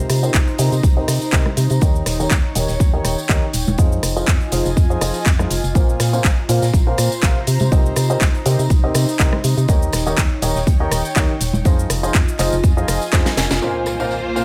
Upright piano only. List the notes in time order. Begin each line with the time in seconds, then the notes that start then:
Already playing: C3 D#4 G4 A#4 C5 D#5
0.23 C3 D#4 G4 A#4 C5 D#5
0.59 C3 D#4 G4 A#4 C5 D#5
0.97 C3 D#4 G4 A#4 C5 D#5
1.33 C3 D#4 G4 A#4 C5 D#5
1.82 D#3 D#4 G4 A#4 C#5 D#5
2.20 D#3 D#4 G4 A#4 C#5 D#5
2.55 D#3 D#4 G4 A#4 C#5 D#5
2.93 D#3 D#4 G4 A#4 C#5 D#5
3.29 D#3 D#4 G4 A#4 C#5 D#5
3.79 F3 D#4 F4 G#4 C5 D#5
4.16 F3 D#4 F4 G#4 C5 D#5
4.52 F3 D#4 F4 G#4 C5 D#5
4.90 F3 D#4 F4 G#4 C5 D#5
5.01 F3 D#4 F4 G#4 C5 D#5
5.39 F3 D#4 F4 G#4 C5 D#5
5.75 A#2 C4 F4 A#4 C5 F5
6.13 A#2 C4 F4 A#4 C5 F5
6.49 A#2 C4 F4 A#4 C5 F5
6.87 A#2 C4 F4 A#4 C5 F5
7.23 C3 C4 F4 A#4 C5 F5
7.72 C3 D#4 G4 A#4 C5 D#5
8.10 C3 D#4 G4 A#4 C5 D#5
8.46 C3 D#4 G4 A#4 C5 D#5
8.84 C3 D#4 G4 A#4 C5 D#5
9.19 C3 D#4 G4 A#4 C5 D#5
9.68 D#3 D#4 G4 A#4 C#5 D#5
10.06 D#3 D#4 G4 A#4 C#5 D#5
10.42 D#3 D#4 G4 A#4 C#5 D#5
10.80 D#3 D#4 G4 A#4 C#5 D#5
11.16 D#3 D#4 G4 A#4 C#5 D#5
11.65 F3 D#4 F4 G#4 C5 D#5
12.03 F3 D#4 F4 G#4 C5 D#5
12.39 F3 D#4 F4 G#4 C5 D#5
12.77 F3 D#4 F4 G#4 C5 D#5
13.13 F3 D#4 F4 G#4 C5 D#5
13.62 A#2 C4 F4 A#4 C5 F5
14.00 A#2 C4 F4 A#4 C5 F5
14.36 A#2 C4 F4 A#4 C5 F5